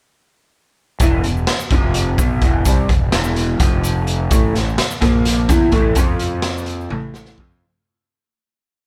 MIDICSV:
0, 0, Header, 1, 4, 480
1, 0, Start_track
1, 0, Tempo, 473186
1, 1019, Time_signature, 7, 3, 24, 8
1, 8995, End_track
2, 0, Start_track
2, 0, Title_t, "Clean electric guitar"
2, 0, Program_c, 0, 27
2, 1026, Note_on_c, 0, 40, 95
2, 1040, Note_on_c, 0, 47, 100
2, 1040, Note_on_c, 0, 52, 118
2, 1256, Note_off_c, 0, 40, 0
2, 1263, Note_off_c, 0, 47, 0
2, 1263, Note_off_c, 0, 52, 0
2, 1273, Note_on_c, 0, 47, 67
2, 1276, Note_on_c, 0, 40, 65
2, 1459, Note_off_c, 0, 47, 0
2, 1460, Note_off_c, 0, 40, 0
2, 1746, Note_on_c, 0, 41, 85
2, 1749, Note_on_c, 0, 48, 81
2, 1760, Note_on_c, 0, 53, 79
2, 2215, Note_off_c, 0, 41, 0
2, 2217, Note_off_c, 0, 48, 0
2, 2223, Note_off_c, 0, 53, 0
2, 2224, Note_on_c, 0, 47, 85
2, 2229, Note_on_c, 0, 54, 84
2, 2236, Note_on_c, 0, 59, 99
2, 2454, Note_off_c, 0, 47, 0
2, 2457, Note_off_c, 0, 54, 0
2, 2460, Note_on_c, 0, 40, 93
2, 2461, Note_off_c, 0, 59, 0
2, 2473, Note_on_c, 0, 47, 95
2, 2473, Note_on_c, 0, 52, 106
2, 2692, Note_off_c, 0, 40, 0
2, 2693, Note_off_c, 0, 47, 0
2, 2697, Note_on_c, 0, 48, 104
2, 2699, Note_off_c, 0, 52, 0
2, 2702, Note_on_c, 0, 60, 115
2, 2704, Note_on_c, 0, 55, 110
2, 2931, Note_off_c, 0, 48, 0
2, 2933, Note_off_c, 0, 60, 0
2, 2933, Note_on_c, 0, 40, 66
2, 2934, Note_off_c, 0, 55, 0
2, 2938, Note_on_c, 0, 47, 64
2, 3128, Note_off_c, 0, 40, 0
2, 3130, Note_off_c, 0, 47, 0
2, 3169, Note_on_c, 0, 40, 99
2, 3172, Note_on_c, 0, 47, 96
2, 3175, Note_on_c, 0, 52, 109
2, 3636, Note_off_c, 0, 40, 0
2, 3640, Note_on_c, 0, 41, 78
2, 3648, Note_off_c, 0, 47, 0
2, 3649, Note_off_c, 0, 52, 0
2, 3653, Note_on_c, 0, 53, 88
2, 3657, Note_on_c, 0, 48, 77
2, 4361, Note_off_c, 0, 41, 0
2, 4367, Note_off_c, 0, 53, 0
2, 4369, Note_off_c, 0, 48, 0
2, 4376, Note_on_c, 0, 45, 105
2, 4376, Note_on_c, 0, 52, 108
2, 4384, Note_on_c, 0, 57, 127
2, 4602, Note_off_c, 0, 45, 0
2, 4609, Note_off_c, 0, 52, 0
2, 4613, Note_off_c, 0, 57, 0
2, 4614, Note_on_c, 0, 45, 68
2, 4619, Note_on_c, 0, 52, 61
2, 4807, Note_off_c, 0, 45, 0
2, 4810, Note_off_c, 0, 52, 0
2, 5084, Note_on_c, 0, 46, 82
2, 5090, Note_on_c, 0, 53, 92
2, 5092, Note_on_c, 0, 58, 94
2, 5562, Note_off_c, 0, 46, 0
2, 5566, Note_off_c, 0, 53, 0
2, 5566, Note_off_c, 0, 58, 0
2, 5571, Note_on_c, 0, 59, 103
2, 5573, Note_on_c, 0, 52, 90
2, 5576, Note_on_c, 0, 64, 101
2, 5798, Note_off_c, 0, 52, 0
2, 5802, Note_on_c, 0, 45, 84
2, 5806, Note_off_c, 0, 59, 0
2, 5806, Note_off_c, 0, 64, 0
2, 5810, Note_on_c, 0, 52, 95
2, 5810, Note_on_c, 0, 57, 116
2, 6041, Note_off_c, 0, 45, 0
2, 6045, Note_off_c, 0, 52, 0
2, 6045, Note_off_c, 0, 57, 0
2, 6052, Note_on_c, 0, 53, 102
2, 6060, Note_on_c, 0, 60, 99
2, 6062, Note_on_c, 0, 65, 125
2, 6999, Note_off_c, 0, 53, 0
2, 7003, Note_off_c, 0, 65, 0
2, 7003, Note_on_c, 0, 45, 79
2, 7006, Note_off_c, 0, 60, 0
2, 7007, Note_on_c, 0, 57, 83
2, 7010, Note_on_c, 0, 52, 68
2, 7482, Note_off_c, 0, 45, 0
2, 7484, Note_off_c, 0, 57, 0
2, 7486, Note_off_c, 0, 52, 0
2, 7493, Note_on_c, 0, 53, 77
2, 7503, Note_on_c, 0, 60, 81
2, 7508, Note_on_c, 0, 65, 99
2, 7727, Note_off_c, 0, 53, 0
2, 7733, Note_off_c, 0, 60, 0
2, 7735, Note_off_c, 0, 65, 0
2, 8995, End_track
3, 0, Start_track
3, 0, Title_t, "Fingered electric bass"
3, 0, Program_c, 1, 33
3, 1022, Note_on_c, 1, 28, 92
3, 1244, Note_off_c, 1, 28, 0
3, 1277, Note_on_c, 1, 28, 73
3, 1492, Note_off_c, 1, 28, 0
3, 1739, Note_on_c, 1, 29, 93
3, 2186, Note_off_c, 1, 29, 0
3, 2218, Note_on_c, 1, 35, 81
3, 2442, Note_off_c, 1, 35, 0
3, 2459, Note_on_c, 1, 28, 94
3, 2682, Note_off_c, 1, 28, 0
3, 2696, Note_on_c, 1, 36, 95
3, 2921, Note_off_c, 1, 36, 0
3, 2940, Note_on_c, 1, 28, 71
3, 3162, Note_off_c, 1, 28, 0
3, 3187, Note_on_c, 1, 28, 94
3, 3629, Note_off_c, 1, 28, 0
3, 3649, Note_on_c, 1, 29, 101
3, 4332, Note_off_c, 1, 29, 0
3, 4375, Note_on_c, 1, 33, 92
3, 4599, Note_off_c, 1, 33, 0
3, 4628, Note_on_c, 1, 33, 71
3, 4846, Note_off_c, 1, 33, 0
3, 5094, Note_on_c, 1, 34, 90
3, 5541, Note_off_c, 1, 34, 0
3, 5572, Note_on_c, 1, 40, 100
3, 5797, Note_off_c, 1, 40, 0
3, 5808, Note_on_c, 1, 33, 99
3, 6034, Note_off_c, 1, 33, 0
3, 6051, Note_on_c, 1, 41, 87
3, 6972, Note_off_c, 1, 41, 0
3, 7011, Note_on_c, 1, 33, 94
3, 7460, Note_off_c, 1, 33, 0
3, 7489, Note_on_c, 1, 41, 96
3, 7716, Note_off_c, 1, 41, 0
3, 8995, End_track
4, 0, Start_track
4, 0, Title_t, "Drums"
4, 1011, Note_on_c, 9, 42, 97
4, 1015, Note_on_c, 9, 36, 103
4, 1028, Note_on_c, 9, 82, 81
4, 1112, Note_off_c, 9, 42, 0
4, 1116, Note_off_c, 9, 36, 0
4, 1129, Note_off_c, 9, 82, 0
4, 1254, Note_on_c, 9, 42, 73
4, 1356, Note_off_c, 9, 42, 0
4, 1389, Note_on_c, 9, 82, 28
4, 1490, Note_off_c, 9, 82, 0
4, 1493, Note_on_c, 9, 38, 107
4, 1493, Note_on_c, 9, 42, 99
4, 1504, Note_on_c, 9, 82, 26
4, 1594, Note_off_c, 9, 38, 0
4, 1594, Note_off_c, 9, 42, 0
4, 1606, Note_off_c, 9, 82, 0
4, 1621, Note_on_c, 9, 82, 66
4, 1723, Note_off_c, 9, 82, 0
4, 1729, Note_on_c, 9, 42, 72
4, 1731, Note_on_c, 9, 36, 108
4, 1830, Note_off_c, 9, 42, 0
4, 1833, Note_off_c, 9, 36, 0
4, 1969, Note_on_c, 9, 42, 101
4, 1988, Note_on_c, 9, 82, 30
4, 2070, Note_off_c, 9, 42, 0
4, 2090, Note_off_c, 9, 82, 0
4, 2212, Note_on_c, 9, 42, 71
4, 2213, Note_on_c, 9, 36, 109
4, 2221, Note_on_c, 9, 82, 102
4, 2313, Note_off_c, 9, 42, 0
4, 2314, Note_off_c, 9, 36, 0
4, 2323, Note_off_c, 9, 82, 0
4, 2449, Note_on_c, 9, 42, 61
4, 2452, Note_on_c, 9, 36, 91
4, 2551, Note_off_c, 9, 42, 0
4, 2553, Note_off_c, 9, 36, 0
4, 2690, Note_on_c, 9, 82, 99
4, 2693, Note_on_c, 9, 36, 102
4, 2694, Note_on_c, 9, 42, 104
4, 2792, Note_off_c, 9, 82, 0
4, 2795, Note_off_c, 9, 36, 0
4, 2795, Note_off_c, 9, 42, 0
4, 2934, Note_on_c, 9, 36, 81
4, 2935, Note_on_c, 9, 42, 70
4, 3035, Note_off_c, 9, 36, 0
4, 3037, Note_off_c, 9, 42, 0
4, 3168, Note_on_c, 9, 38, 104
4, 3168, Note_on_c, 9, 42, 96
4, 3185, Note_on_c, 9, 82, 33
4, 3270, Note_off_c, 9, 38, 0
4, 3270, Note_off_c, 9, 42, 0
4, 3286, Note_off_c, 9, 82, 0
4, 3288, Note_on_c, 9, 82, 84
4, 3390, Note_off_c, 9, 82, 0
4, 3410, Note_on_c, 9, 42, 77
4, 3512, Note_off_c, 9, 42, 0
4, 3648, Note_on_c, 9, 42, 96
4, 3651, Note_on_c, 9, 36, 102
4, 3669, Note_on_c, 9, 82, 33
4, 3750, Note_off_c, 9, 42, 0
4, 3752, Note_off_c, 9, 36, 0
4, 3771, Note_off_c, 9, 82, 0
4, 3890, Note_on_c, 9, 42, 70
4, 3900, Note_on_c, 9, 82, 91
4, 3991, Note_off_c, 9, 42, 0
4, 4002, Note_off_c, 9, 82, 0
4, 4129, Note_on_c, 9, 42, 57
4, 4230, Note_off_c, 9, 42, 0
4, 4368, Note_on_c, 9, 42, 94
4, 4372, Note_on_c, 9, 36, 106
4, 4386, Note_on_c, 9, 82, 96
4, 4469, Note_off_c, 9, 42, 0
4, 4473, Note_off_c, 9, 36, 0
4, 4488, Note_off_c, 9, 82, 0
4, 4619, Note_on_c, 9, 38, 33
4, 4619, Note_on_c, 9, 42, 63
4, 4721, Note_off_c, 9, 38, 0
4, 4721, Note_off_c, 9, 42, 0
4, 4759, Note_on_c, 9, 82, 31
4, 4850, Note_on_c, 9, 38, 114
4, 4850, Note_on_c, 9, 42, 94
4, 4860, Note_off_c, 9, 82, 0
4, 4865, Note_on_c, 9, 82, 30
4, 4952, Note_off_c, 9, 38, 0
4, 4952, Note_off_c, 9, 42, 0
4, 4966, Note_off_c, 9, 82, 0
4, 4977, Note_on_c, 9, 82, 75
4, 5078, Note_off_c, 9, 82, 0
4, 5088, Note_on_c, 9, 38, 33
4, 5088, Note_on_c, 9, 42, 74
4, 5092, Note_on_c, 9, 36, 101
4, 5189, Note_off_c, 9, 38, 0
4, 5189, Note_off_c, 9, 42, 0
4, 5193, Note_off_c, 9, 36, 0
4, 5329, Note_on_c, 9, 38, 37
4, 5329, Note_on_c, 9, 42, 97
4, 5347, Note_on_c, 9, 82, 28
4, 5430, Note_off_c, 9, 38, 0
4, 5430, Note_off_c, 9, 42, 0
4, 5449, Note_off_c, 9, 82, 0
4, 5566, Note_on_c, 9, 38, 34
4, 5566, Note_on_c, 9, 42, 73
4, 5569, Note_on_c, 9, 36, 108
4, 5577, Note_on_c, 9, 82, 88
4, 5668, Note_off_c, 9, 38, 0
4, 5668, Note_off_c, 9, 42, 0
4, 5670, Note_off_c, 9, 36, 0
4, 5678, Note_off_c, 9, 82, 0
4, 5800, Note_on_c, 9, 42, 65
4, 5807, Note_on_c, 9, 36, 98
4, 5901, Note_off_c, 9, 42, 0
4, 5908, Note_off_c, 9, 36, 0
4, 6037, Note_on_c, 9, 42, 103
4, 6045, Note_on_c, 9, 36, 112
4, 6055, Note_on_c, 9, 82, 88
4, 6138, Note_off_c, 9, 42, 0
4, 6147, Note_off_c, 9, 36, 0
4, 6157, Note_off_c, 9, 82, 0
4, 6283, Note_on_c, 9, 42, 72
4, 6302, Note_on_c, 9, 82, 28
4, 6385, Note_off_c, 9, 42, 0
4, 6403, Note_off_c, 9, 82, 0
4, 6516, Note_on_c, 9, 38, 115
4, 6516, Note_on_c, 9, 42, 98
4, 6618, Note_off_c, 9, 38, 0
4, 6618, Note_off_c, 9, 42, 0
4, 6673, Note_on_c, 9, 82, 70
4, 6756, Note_on_c, 9, 42, 73
4, 6774, Note_off_c, 9, 82, 0
4, 6790, Note_on_c, 9, 82, 27
4, 6857, Note_off_c, 9, 42, 0
4, 6892, Note_off_c, 9, 82, 0
4, 6905, Note_on_c, 9, 82, 31
4, 7004, Note_on_c, 9, 48, 64
4, 7006, Note_off_c, 9, 82, 0
4, 7105, Note_off_c, 9, 48, 0
4, 7241, Note_on_c, 9, 38, 77
4, 7265, Note_on_c, 9, 82, 81
4, 7343, Note_off_c, 9, 38, 0
4, 7358, Note_on_c, 9, 38, 69
4, 7367, Note_off_c, 9, 82, 0
4, 7392, Note_on_c, 9, 82, 27
4, 7460, Note_off_c, 9, 38, 0
4, 7484, Note_on_c, 9, 36, 83
4, 7493, Note_off_c, 9, 82, 0
4, 7586, Note_off_c, 9, 36, 0
4, 8995, End_track
0, 0, End_of_file